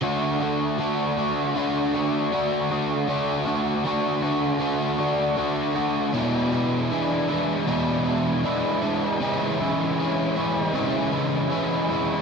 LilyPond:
\new Staff \with { instrumentName = "Overdriven electric guitar" } { \time 4/4 \key d \lydian \tempo 4 = 78 <d a d' fis'>8 <a d' fis'>8 <d a d' fis'>8 <a d' fis'>8 <d a d' fis'>8 <a d' fis'>8 <d a d' fis'>8 <a d' fis'>8 | <d a d' fis'>8 <a d' fis'>8 <d a d' fis'>8 <a d' fis'>8 <d a d' fis'>8 <a d' fis'>8 <d a d' fis'>8 <a d' fis'>8 | <e, b, e gis d' e'>8 <e gis d' e'>8 <e gis d' e'>8 <e gis d' e'>8 <e, b, e gis d' e'>8 <e gis d' e'>8 <e gis d' e'>8 <e gis d' e'>8 | <cis e gis cis' e'>8 <gis cis' e'>8 <e gis cis' e'>8 <gis cis' e'>8 <cis e gis cis' e'>8 <gis cis' e'>8 <e gis cis' e'>8 <gis cis' e'>8 | }